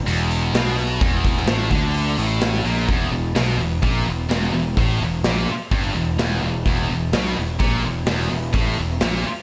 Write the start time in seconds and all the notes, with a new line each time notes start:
0.06 E1 E2, open hi-hat
0.31 open hi-hat
0.53 B1 B2, snare, open hi-hat
0.78 open hi-hat
1.00 E1 E2, kick, open hi-hat
1.25 kick, open hi-hat
1.37 snare
1.46 A1 A2, snare, open hi-hat
1.71 D2 D3, kick, open hi-hat
1.94 open hi-hat
2.18 A1 A2, open hi-hat
2.41 snare, open hi-hat
2.63 A#1 A#2, open hi-hat
2.88 E1 E2, kick, open hi-hat
3.11 E1 E2
3.35 B1 B2, snare, open hi-hat
3.58 E1 E2
3.83 A#1 A#2, kick, open hi-hat
4.06 E1 E2
4.29 E1 E2, snare, open hi-hat
4.53 E1 E2
4.77 A1 A2, kick, open hi-hat
4.99 E1 E2
5.23 A#1 A#2, snare, open hi-hat
5.48 muted picked electric bass stroke, muted distorted electric guitar stroke
5.71 G1 G2, kick, open hi-hat
5.95 E1 E2
6.18 E1 E2, snare, open hi-hat
6.42 E1 E2
6.66 E1 E2, kick, open hi-hat
6.90 E1 E2
7.13 B1 B2, snare, open hi-hat
7.37 E1 E2
7.59 A#1 A#2, kick, open hi-hat
7.83 E1 E2
8.06 E1 E2, snare, open hi-hat
8.30 E1 E2
8.53 A1 A2, kick, open hi-hat
8.77 E1 E2
9.01 A#1 A#2, snare, open hi-hat
9.25 muted distorted electric guitar stroke, muted picked electric bass stroke